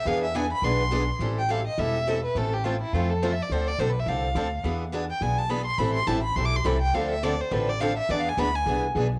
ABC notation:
X:1
M:4/4
L:1/16
Q:"Swing" 1/4=209
K:Am
V:1 name="Violin"
f2 e2 ^g2 b2 c'6- c' z | z2 g2 f2 ^d2 e6 B2 | A2 G2 F2 E2 F2 A2 (3c2 e2 d2 | c2 d2 (3c2 B2 e2 f8 |
z6 g2 ^g2 a2 b2 c'2 | b2 c'2 a2 b2 (3c'2 d'2 c'2 b2 g2 | f2 e2 d2 c2 B2 d2 f2 e2 | (3d2 f2 ^g2 b2 g4 z6 |]
V:2 name="Steel-string acoustic guitar"
[E,B,D^GB]2 z2 [E,B,DGB]2 z2 [E,B,DGB]2 z2 [E,B,DGB]2 z2 | z16 | z16 | z16 |
z16 | [E,G,CEA]2 z2 [E,G,CEA]2 z2 [E,G,CEA]2 z2 [E,G,CEA]2 z2 | [D,F,CDA]2 z2 [D,F,CDA]2 z2 [D,F,CDA]2 z2 [D,F,CDA]2 z2 | [E,B,D^GB]2 z2 [E,B,DGB]2 z2 [E,B,DGB]2 z2 [E,B,DGB]2 z2 |]
V:3 name="Steel-string acoustic guitar"
[E,B,D^G]2 z2 [E,B,DG]2 z2 [E,B,DG]2 z2 [E,B,DG]2 z2 | [E,G,CEA]2 z2 [E,G,CEA]2 z2 [E,G,CEA]2 z2 [E,G,CEA]2 z2 | [E,A,CFA]2 z2 [E,A,CFA]2 z2 [E,A,CFA]2 z2 [E,A,CFA]2 z2 | [D,F,CDA]2 z2 [D,F,CDA]2 z2 [D,F,CDA]2 z2 [D,F,CDA]2 z2 |
[E,B,D^G]2 z2 [E,B,DG]2 z2 [E,B,DG]2 z2 [E,B,DG]2 z2 | [E,G,CEA]2 z2 [E,G,CEA]2 z2 [E,G,CEA]2 z2 [E,G,CEA]2 z2 | [D,F,CDA]2 z2 [D,F,CDA]2 z2 [D,F,CDA]2 z2 [D,F,CDA]2 z2 | [E,B,D^G]2 z2 [E,B,DG]2 z2 [E,B,DG]2 z2 [E,B,DG]2 z2 |]
V:4 name="Upright bass" clef=bass
E,,8 B,,,8 | A,,,8 E,,,8 | A,,,8 F,,8 | D,,4 B,,,4 C,,4 D,,4 |
E,,8 B,,,8 | A,,,4 A,,,4 B,,,4 C,,4 | D,,8 A,,,8 | E,,4 D,,4 C,,4 B,,,4 |]